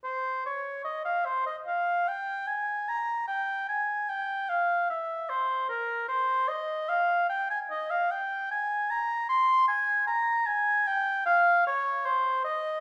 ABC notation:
X:1
M:4/4
L:1/16
Q:1/4=75
K:Fm
V:1 name="Oboe"
c2 d2 e f c e f2 g2 a2 b2 | g2 a2 g2 f2 =e2 c2 B2 c2 | e2 f2 g a e f g2 a2 b2 c'2 | a2 b2 a2 g2 f2 d2 c2 e2 |]